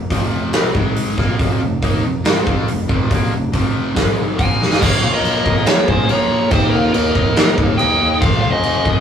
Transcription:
0.10 picked electric bass F1, overdriven electric guitar F2 C3 F3, kick, open hi-hat
0.53 picked electric bass B1, overdriven electric guitar B2 F#3 B3, snare, open hi-hat
0.75 picked electric bass G#1, overdriven electric guitar G#2 D#3 G#3, kick
0.96 open hi-hat
1.18 picked electric bass A#1, overdriven electric guitar A#2 F3 A#3, kick, snare
1.39 picked electric bass F1, overdriven electric guitar F2 C3 F3, kick, open hi-hat
1.61 picked electric bass F1, overdriven electric guitar F2 C3
1.83 picked electric bass D#2, overdriven electric guitar D#3 A#3 D#4, kick, open hi-hat
2.04 picked electric bass F1, overdriven electric guitar F2 C3
2.24 picked electric bass G#1, overdriven electric guitar G#2 D#3 G#3, snare, open hi-hat
2.45 picked electric bass F2, overdriven electric guitar F3 C4 F4, kick
2.67 picked electric bass F1, overdriven electric guitar F2 C3, open hi-hat
2.88 picked electric bass F1, overdriven electric guitar F2 C3 F3, kick
3.09 picked electric bass A#1, overdriven electric guitar A#2 F3 A#3, kick, open hi-hat
3.31 picked electric bass F1, overdriven electric guitar F2 C3
3.52 picked electric bass F1, overdriven electric guitar F2 C3 F3, kick, open hi-hat
3.95 picked electric bass G#1, overdriven electric guitar G#2 D#3 G#3, kick, snare, open hi-hat
4.38 picked electric bass A#1, overdriven electric guitar A#2 F3 A#3, lead electric guitar F5 G#5, kick, open hi-hat
4.60 picked electric bass G#1, overdriven electric guitar G#2 D#3 G#3, snare
4.72 snare
4.81 picked electric bass A#1, overdriven electric guitar A#2 F3 A#3, tonewheel organ A#3 F4 C#5, lead electric guitar C#5 F5, kick, crash
5.02 picked electric bass A#1, lead electric guitar C#5 F5
5.13 lead electric guitar A#4 D#5
5.24 picked electric bass A#1, crash
5.44 picked electric bass A#1, overdriven electric guitar A#2 F3 A#3, kick
5.65 distorted electric guitar A#2 F3 A#3, picked electric bass A#2, lead electric guitar A#4 C#5, snare, crash
5.88 picked electric bass A#1, lead electric guitar G#4 C5, kick
6.07 picked electric bass A#1, overdriven electric guitar A#2 F3 A#3, lead electric guitar A#4 C#5, crash
6.31 picked electric bass A#1
6.50 picked electric bass D#2, overdriven electric guitar D#3 A#3 D#4, tonewheel organ D#4 G4, lead electric guitar G4 C5, kick, crash
6.70 picked electric bass D#2, lead electric guitar A#4
6.75 lead electric guitar F4
6.94 picked electric bass D#2, lead electric guitar D#4 A#4, crash
7.15 picked electric bass D#2, overdriven electric guitar D#3 A#3 D#4, kick
7.36 distorted electric guitar D#3 A#3 D#4, picked electric bass D#3, snare, crash
7.58 picked electric bass D#2, kick
7.77 picked electric bass D#2, overdriven electric guitar D#3 A#3 D#4, lead electric guitar D#5 G5, crash
8.02 picked electric bass D#2
8.21 picked electric bass F1, overdriven electric guitar F2 C3 F3, tonewheel organ F3 C4 G5, lead electric guitar C5 F5, kick, crash
8.41 picked electric bass F1, lead electric guitar C5 F5
8.51 lead electric guitar G#4 D#5
8.63 picked electric bass F1, crash
8.85 picked electric bass F1, overdriven electric guitar F2 C3 F3, kick

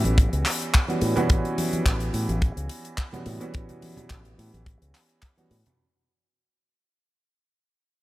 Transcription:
Already playing: grand piano E3 G3 B3 C#4 F#4
0.04 fingered electric bass A1, closed hi-hat, high conga, shaker
0.18 kick, closed hi-hat, shaker
0.33 fingered electric bass C#2, closed hi-hat
0.45 clap, open hi-hat, shaker
0.61 closed hi-hat, shaker
0.74 kick, clap, closed hi-hat
0.88 grand piano E3 G3 B3 C#4 F#4, closed hi-hat, high conga
1.01 fingered electric bass A2, open hi-hat, shaker
1.16 grand piano E3 G3 B3 C#4 F#4, closed hi-hat, low conga, shaker
1.29 fingered electric bass A1, kick, closed hi-hat, shaker
1.45 closed hi-hat
1.58 open hi-hat, high conga, shaker
1.72 closed hi-hat, high conga, shaker
1.86 fingered electric bass A1, kick, clap, closed hi-hat
2.00 closed hi-hat
2.14 fingered electric bass A2, open hi-hat, shaker
2.29 fingered electric bass A1, closed hi-hat, high conga, shaker
2.42 kick, closed hi-hat, shaker
2.57 fingered electric bass C#2, closed hi-hat
2.69 open hi-hat, shaker
2.85 closed hi-hat, shaker
2.98 kick, clap, closed hi-hat
3.13 grand piano E3 G3 B3 C#4 F#4, closed hi-hat, high conga, low conga
3.26 fingered electric bass A2, open hi-hat, shaker
3.40 grand piano E3 G3 B3 C#4 F#4, closed hi-hat, shaker
3.54 fingered electric bass A1, kick, closed hi-hat
3.69 closed hi-hat, low conga
3.82 open hi-hat, high conga, shaker
3.97 muted fingered electric bass stroke, closed hi-hat, high conga, low conga, shaker
4.10 fingered electric bass A1, kick, clap, closed hi-hat
4.25 closed hi-hat
4.38 fingered electric bass A2, open hi-hat, shaker
4.54 fingered electric bass A1, closed hi-hat, high conga, shaker
4.66 kick, closed hi-hat
4.82 fingered electric bass C#2, closed hi-hat
4.95 clap, open hi-hat, shaker
5.09 closed hi-hat, shaker
5.22 kick, clap, closed hi-hat
5.37 grand piano E3 G3 B3 C#4 F#4, closed hi-hat, high conga
5.51 fingered electric bass A2, open hi-hat, shaker
5.66 closed hi-hat, low conga, shaker

